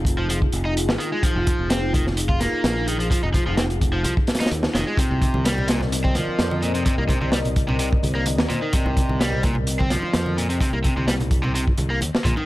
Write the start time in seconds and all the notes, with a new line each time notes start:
Already playing: F1 D#4 F4 G#4
0.05 kick, closed hi-hat
0.18 F3
0.30 F3, closed hi-hat
0.42 kick
0.52 F1, closed hi-hat
0.65 D#4
0.77 closed hi-hat
0.89 G#1, snare
1.00 D#3, closed hi-hat
1.12 G#3
1.23 F3, muted fingered electric bass stroke, kick, closed hi-hat
1.36 F1
1.47 kick, closed hi-hat
1.59 F1
1.70 C4, snare, closed hi-hat
1.93 D#3, kick, closed hi-hat
2.07 snare
2.17 closed hi-hat
2.29 F4, kick
2.40 A#3, snare, closed hi-hat
2.53 muted fingered electric bass stroke
2.64 A#1, snare, closed hi-hat
2.87 D#3, closed hi-hat
2.99 F3, closed hi-hat
3.11 F3, kick, closed hi-hat
3.23 F1 D#4
3.34 F3, kick, closed hi-hat
3.46 F1 F3
3.57 C4, snare, closed hi-hat
3.70 closed hi-hat
3.81 kick, closed hi-hat
3.93 F3
4.04 C2 F3, closed hi-hat
4.17 kick
4.27 snare, closed hi-hat
4.35 snare, closed hi-hat
4.40 D#4, muted fingered electric bass stroke, snare, closed hi-hat
4.46 snare, closed hi-hat
4.51 D#2, closed hi-hat
4.63 snare
4.75 F1 D#3, snare, closed hi-hat
4.87 G#3
4.97 C3 C4 A#4 D5 D#5, muted fingered electric bass stroke, kick, closed hi-hat, high bongo
5.11 C2
5.22 kick, closed hi-hat
5.34 C2, high bongo, high conga
5.45 G3, snare, closed hi-hat
5.58 high bongo, low conga
5.68 A#2, snare, closed hi-hat
5.81 snare, low conga
5.92 closed hi-hat, high bongo
6.04 C4, kick, high conga
6.15 F3, snare, closed hi-hat, high bongo, high conga
6.28 muted fingered electric bass stroke
6.39 F2, snare, closed hi-hat
6.51 high bongo, high conga
6.62 A#2, closed hi-hat
6.74 C3, closed hi-hat, high bongo
6.85 C3, muted fingered electric bass stroke, kick, closed hi-hat
6.98 C2 A#3
7.09 C3, kick, closed hi-hat, high bongo
7.21 C2 C3, high conga
7.32 G3, snare, closed hi-hat, high bongo
7.45 closed hi-hat, low conga
7.56 kick, closed hi-hat
7.68 C3, high bongo, low conga
7.79 C3, closed hi-hat
7.91 kick, high bongo
8.03 C2, closed hi-hat, high conga
8.15 A#3
8.26 closed hi-hat, high bongo, high conga
8.38 D#2, snare
8.50 A#2, closed hi-hat, high bongo, high conga, low conga
8.62 D#3
8.73 C3, muted fingered electric bass stroke, kick, closed hi-hat
8.86 C2, high bongo
8.97 kick, closed hi-hat
9.09 C2, high bongo, high conga
9.20 G3, snare, closed hi-hat
9.32 low conga
9.43 A#2, kick, closed hi-hat, high bongo
9.55 low conga
9.67 closed hi-hat, high bongo
9.79 C4, kick, high conga
9.90 F3, snare, closed hi-hat, high conga
10.02 muted fingered electric bass stroke, high bongo
10.13 F2, snare, closed hi-hat
10.26 high bongo, high conga
10.37 A#2, closed hi-hat
10.50 C3, closed hi-hat
10.60 C3, muted fingered electric bass stroke, kick, closed hi-hat, high bongo
10.73 C2 A#3
10.84 C3, kick, closed hi-hat, high bongo
10.97 C2 C3, high conga
11.07 G3, snare, closed hi-hat
11.20 closed hi-hat, high bongo, low conga
11.31 kick, closed hi-hat
11.43 C3, high bongo, low conga
11.55 C3, closed hi-hat
11.67 kick
11.78 C2, closed hi-hat, high bongo, high conga
11.90 A#3
12.01 D#2, closed hi-hat, high bongo, high conga
12.15 snare
12.25 A#1 A#2, kick, closed hi-hat, high conga, low conga
12.37 D#3, high bongo